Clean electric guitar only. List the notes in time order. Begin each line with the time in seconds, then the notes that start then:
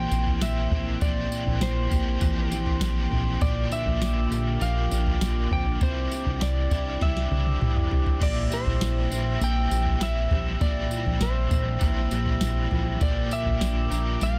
Already playing: A#2 E3 A#3 C4 G4
0.11 C4
0.42 A#3
0.71 C4
1.01 A#2
1.31 C4
1.61 A#3
1.91 G4
2.21 E3
2.51 C4
2.81 A#3
3.11 C4
3.41 A#2
3.71 D4
4.01 A#3
4.31 G4
4.61 F3
4.91 D4
5.21 A#3
5.51 C4
5.66 D4
5.81 C4
6.11 G4
6.41 E4
6.71 D5
7.01 E4
7.31 G4
7.61 E4
7.91 G4
8.21 A#2
8.51 G4
8.80 E4
9.11 C5
9.41 A#3
9.71 G4
10.01 E4
10.31 G4
10.61 A#2
10.91 F4
11.06 G4
11.21 E4
11.51 C5
11.82 A#3
12.12 G4
12.42 E4
12.71 F4
12.86 G4
13.01 A#2
13.31 F4
13.61 D4
13.91 A#4
14.21 G3